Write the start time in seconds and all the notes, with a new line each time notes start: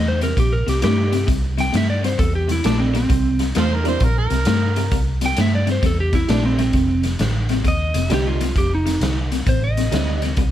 Already playing: E2 C3 A3
0.08 C5
0.21 C3 G3 A#4, snare, closed hi-hat
0.37 A#1 C3 G3 G4, kick, closed hi-hat
0.53 A#4
0.67 C2 C3 G3 G4, snare, closed hi-hat
0.82 G2 C3 G3 A3 A#3 D4 E4 G4, snare, closed hi-hat
1.12 C3 G3, snare, closed hi-hat
1.27 C2 C3 G3, kick, closed hi-hat
1.58 C3 G3 G5, snare, closed hi-hat
1.72 G2 C3 A3, snare, closed hi-hat
1.77 E5
1.90 D5
2.03 C3 G3 C5, snare, closed hi-hat
2.18 E2 C3 G3 A4, kick, closed hi-hat
2.35 G4
2.48 C3 G3 E4, snare, closed hi-hat
2.64 A#1 C3 G3 A3 A#3 D4 E4, snare, closed hi-hat
2.80 C4
2.94 C3 G3 C4, snare, closed hi-hat
3.09 C2 C3 G3, kick, closed hi-hat
3.39 C3 G3, snare, closed hi-hat
3.55 E2 C3 A3 F4 A4 C5, snare, closed hi-hat
3.75 A#4
3.84 C3 G3 A#3 D4 E4, snare, closed hi-hat
3.88 C5
4.00 A#1 C3 G3 A#4, kick, closed hi-hat
4.18 A#4
4.30 C2 C3 G3, snare, closed hi-hat
4.45 G2 C3 A3, snare, closed hi-hat
4.76 C3 G3, snare, closed hi-hat
4.91 C2 C3 G3, kick, closed hi-hat
5.21 C3 G3, snare, closed hi-hat
5.26 G5
5.37 G2 C3 A3, snare, closed hi-hat
5.41 E5
5.55 D5
5.66 C3 G3, snare, closed hi-hat
5.72 C5
5.82 E2 C3 G3, kick, snare, closed hi-hat
5.86 A4
6.00 G4
6.13 C3 G3 E4, kick, snare, closed hi-hat
6.28 A#1 C3 G3 A3 A#3 D4 E4, snare, closed hi-hat
6.46 C4
6.58 C3 G3 C4, snare, closed hi-hat
6.73 F1 F2 C3, kick, snare, closed hi-hat
7.03 F2 C3, snare, closed hi-hat
7.19 A1 F2 D3, snare, closed hi-hat
7.49 F2 C3, snare, closed hi-hat
7.64 D#2 F2 C3, kick, closed hi-hat
7.68 D#5
7.94 F1 F2 C3, snare, closed hi-hat
8.10 C2 F2 D3 G3 A3 C4 D#4, snare, closed hi-hat
8.14 G4
8.27 F4
8.41 F2 C3, snare, closed hi-hat
8.56 F1 F2 C3 G4, kick, snare, closed hi-hat
8.75 D#4
8.86 F2 C3, snare, closed hi-hat
9.01 C2 F2 D3, snare, closed hi-hat
9.32 F2 C3, snare, closed hi-hat
9.46 A1 F2 C3 C5, kick, closed hi-hat
9.64 D#5
9.77 F2 C3, snare, closed hi-hat
9.91 D2 F2 D3 G3 A3 C4 D#4, snare, closed hi-hat
10.22 F2 C3, snare, closed hi-hat
10.37 C2 C3 G3, kick, closed hi-hat